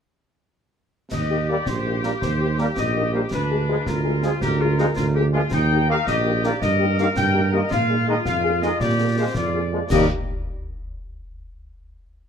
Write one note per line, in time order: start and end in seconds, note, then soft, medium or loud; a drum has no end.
1.11 1.58 D#2 medium
1.11 3.28 G4 medium
1.11 1.46 D#5 medium
1.11 concert bass drum medium
1.11 snare medium
1.11 crash soft
1.30 1.37 A#3 soft
1.30 1.37 D#4 soft
1.30 1.37 G4 soft
1.49 1.56 G3 medium
1.49 1.55 A#3 soft
1.49 1.56 A#3 medium
1.49 1.56 D#4 soft
1.49 1.56 G4 soft
1.49 1.67 D5 medium
1.66 2.13 A#1 medium
1.66 2.04 C5 medium
1.66 concert bass drum medium
1.66 snare medium
1.86 1.93 A#3 soft
1.86 1.93 D#4 soft
1.86 1.93 G4 soft
2.03 2.10 G3 medium
2.03 2.10 A#3 soft
2.03 2.12 A#3 soft
2.03 2.12 D#4 soft
2.03 2.12 G4 soft
2.03 2.12 A#4 medium
2.03 snare medium
2.21 2.68 D#2 medium
2.21 2.55 C5 medium
2.21 concert bass drum medium
2.21 snare medium
2.42 2.48 A#3 soft
2.42 2.48 D#4 soft
2.42 2.48 G4 soft
2.58 2.65 G3 medium
2.58 2.65 A#3 medium
2.58 2.66 A#3 soft
2.58 2.66 D#4 soft
2.58 2.66 G4 soft
2.58 2.67 A#4 medium
2.58 snare soft
2.77 3.23 A#1 medium
2.77 3.11 D#5 medium
2.77 concert bass drum medium
2.77 snare medium
2.96 3.03 A#3 medium
2.96 3.03 D#4 medium
2.96 3.03 G4 medium
3.13 3.20 G3 medium
3.13 3.20 A#3 medium
3.13 3.21 A#3 soft
3.13 3.21 D#4 soft
3.13 3.21 G4 soft
3.13 3.21 C5 medium
3.31 3.78 D2 medium
3.31 3.83 D4 medium
3.31 3.83 B4 medium
3.31 concert bass drum medium
3.31 snare medium
3.51 3.58 G#3 soft
3.51 3.58 F4 soft
3.51 3.58 G#4 soft
3.68 3.75 F3 medium
3.68 3.75 G#3 medium
3.68 3.75 G#3 soft
3.68 3.76 F4 soft
3.68 3.75 G#4 soft
3.86 4.33 D2 medium
3.86 4.42 F4 medium
3.86 4.24 A#4 medium
3.86 concert bass drum medium
3.86 snare medium
4.05 4.12 G#3 soft
4.05 4.12 F4 medium
4.05 4.12 G#4 soft
4.22 4.29 F3 medium
4.22 4.29 G#3 medium
4.22 4.30 G#3 medium
4.22 4.30 F4 medium
4.22 4.32 G#4 medium
4.22 4.30 G#4 soft
4.22 snare soft
4.41 4.88 D2 medium
4.41 4.59 G4 medium
4.41 5.29 A#4 medium
4.41 concert bass drum medium
4.41 snare medium
4.60 4.67 A#3 medium
4.60 4.78 F4 medium
4.60 4.67 F4 medium
4.60 4.67 G#4 medium
4.78 4.85 F3 medium
4.78 4.85 G#3 medium
4.78 4.85 A#3 medium
4.78 4.86 D#4 medium
4.78 4.85 F4 medium
4.78 4.86 G#4 soft
4.78 snare soft
4.95 5.43 D2 medium
4.95 5.04 F4 medium
4.95 concert bass drum medium
4.95 snare medium
5.14 5.23 A#3 medium
5.14 5.23 F4 medium
5.14 5.23 G4 medium
5.14 5.22 G#4 medium
5.33 5.40 F3 medium
5.33 5.40 G#3 medium
5.33 5.41 A#3 medium
5.33 5.50 F4 medium
5.33 5.41 F4 medium
5.33 5.42 G#4 medium
5.51 5.98 D#2 medium
5.51 6.03 D#4 medium
5.51 5.86 G5 loud
5.51 concert bass drum medium
5.51 snare medium
5.51 crash soft
5.71 5.78 A#3 medium
5.71 5.78 D#4 medium
5.71 5.78 G4 medium
5.88 5.95 D#3 medium
5.88 5.95 A#3 medium
5.88 5.96 A#3 medium
5.88 5.96 D#4 medium
5.88 5.97 G4 medium
5.88 6.06 F5 medium
6.07 6.52 A#1 medium
6.07 6.58 G4 medium
6.07 6.41 D#5 medium
6.07 concert bass drum medium
6.07 snare medium
6.26 6.32 A#3 medium
6.26 6.32 D#4 medium
6.26 6.33 G4 medium
6.43 6.50 D#3 medium
6.43 6.50 A#3 medium
6.43 6.50 D#4 medium
6.43 6.51 G4 medium
6.43 6.62 D5 medium
6.43 snare medium
6.61 7.08 G2 medium
6.61 7.67 A#4 medium
6.61 6.95 D#5 medium
6.61 concert bass drum medium
6.61 snare medium
6.80 6.87 A#3 medium
6.80 6.87 D#4 medium
6.80 6.86 G4 medium
6.98 7.05 D#3 medium
6.98 7.05 A#3 medium
6.98 7.05 D#4 medium
6.98 7.05 G4 medium
6.98 7.06 F5 medium
6.98 snare soft
7.16 7.62 G2 medium
7.16 7.50 G5 medium
7.16 concert bass drum medium
7.16 snare medium
7.34 7.41 A#3 medium
7.34 7.41 D#4 medium
7.34 7.41 G4 medium
7.53 7.60 D#3 medium
7.53 7.60 A#3 medium
7.53 7.60 D#4 medium
7.53 7.60 G4 medium
7.53 7.71 D#5 medium
7.71 8.17 A#2 medium
7.71 8.77 F4 medium
7.71 8.06 F5 medium
7.71 concert bass drum medium
7.71 snare medium
7.90 7.96 A#3 medium
7.90 7.96 D#4 medium
7.90 7.96 G#4 soft
8.08 8.14 D#3 medium
8.08 8.14 G#3 medium
8.08 8.15 A#3 medium
8.08 8.15 D#4 medium
8.08 8.15 G#4 medium
8.08 8.17 D#5 medium
8.25 8.72 F2 medium
8.25 8.60 F5 medium
8.25 concert bass drum medium
8.25 snare medium
8.44 8.51 A#3 medium
8.44 8.51 D#4 medium
8.44 8.51 G#4 medium
8.62 8.69 D#3 medium
8.62 8.69 G#3 medium
8.62 8.69 A#3 soft
8.62 8.69 D#4 medium
8.62 8.69 G#4 medium
8.62 8.79 D#5 medium
8.62 snare medium
8.80 9.26 A#2 medium
8.80 9.32 G4 medium
8.80 9.14 D5 medium
8.80 concert bass drum medium
8.80 snare medium
8.99 9.06 A#3 soft
8.99 9.06 F4 soft
8.99 9.05 G#4 soft
9.17 9.24 F3 medium
9.17 9.24 G#3 medium
9.17 9.24 A#3 soft
9.17 9.24 F4 soft
9.17 9.24 G#4 soft
9.17 9.34 C5 medium
9.35 9.82 F2 medium
9.35 9.63 F4 medium
9.35 9.87 D5 medium
9.35 concert bass drum medium
9.35 snare medium
9.53 9.60 A#3 soft
9.53 9.61 F4 soft
9.53 9.61 G#4 soft
9.72 9.79 F3 medium
9.72 9.79 G#3 medium
9.72 9.79 A#3 soft
9.72 9.79 F4 soft
9.72 9.79 G#4 soft
9.90 10.06 D#2 medium
9.90 10.07 G3 medium
9.90 10.06 A#3 medium
9.90 10.07 A#3 medium
9.90 10.06 D#4 medium
9.90 10.06 G4 medium
9.90 10.07 G4 medium
9.90 10.06 A#4 medium
9.90 10.06 D#5 medium
9.90 concert bass drum medium
9.90 snare medium
9.90 crash medium